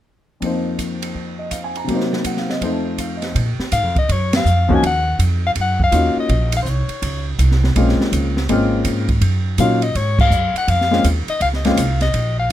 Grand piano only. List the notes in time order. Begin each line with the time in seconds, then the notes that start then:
0.40 F2 F3 A#3
0.44 D#4 C5
1.39 D#5
1.51 F5
1.64 G#5
1.77 A#5
1.84 C3 F#3
1.90 A#3 D#4
1.95 C5
2.26 F#5
2.39 F5
2.51 D#5
2.62 F2 F3 A3 D#4 C5
3.00 F5
3.17 D#5
4.68 F3 A#3 C#4 D#4 F#4
5.91 A#3 C#4 D#4 F4 F#4
7.76 G#3 A#3 C4 C#4 F4
8.49 G#3 A#3 C4 C#4 F4
9.58 F#3 A#3 C#4 D#4 F4
10.91 G#3 A#3 C4 C#4 F4
11.65 G#3 A#3 C4 C#4 F4